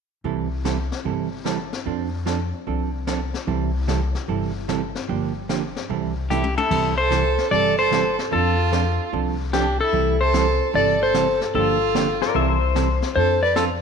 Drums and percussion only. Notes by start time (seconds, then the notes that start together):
0.25 brush sweep
0.65 snare, hi-hat pedal
0.92 snare
1.06 brush sweep
1.46 snare, hi-hat pedal
1.73 snare
1.86 brush sweep
2.26 snare, hi-hat pedal
2.67 brush sweep
3.07 snare, hi-hat pedal
3.34 snare
3.48 brush sweep
3.88 snare, hi-hat pedal
4.15 snare
4.28 brush sweep
4.69 snare, hi-hat pedal
4.95 snare
5.09 brush sweep
5.49 snare, hi-hat pedal
5.76 snare
5.90 brush sweep
6.30 hi-hat pedal, high tom
6.44 high tom
6.57 high tom
6.71 brush sweep, kick, crash
7.11 snare, hi-hat pedal
7.38 snare
7.52 brush sweep
7.92 snare, hi-hat pedal
8.19 snare
8.32 brush sweep
8.72 snare, hi-hat pedal
9.13 brush sweep
9.53 snare, hi-hat pedal
9.93 brush sweep
10.34 snare, hi-hat pedal
10.74 brush sweep
11.14 snare, hi-hat pedal
11.41 snare
11.55 brush sweep
11.95 snare, hi-hat pedal
12.22 snare
12.36 brush sweep
12.76 snare, hi-hat pedal
13.02 snare
13.16 brush sweep
13.56 snare, hi-hat pedal